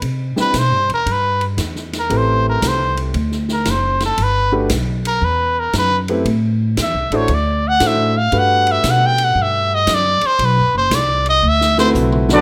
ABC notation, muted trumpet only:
X:1
M:4/4
L:1/8
Q:"Swing" 1/4=116
K:G
V:1 name="Muted trumpet"
z B c _B =B z2 _B | c _B c z2 B c A | B z2 _B =B _B =B z | z2 e ^c d f e =f |
f e (3f g f e _e d c | B c d _e =e c z2 |]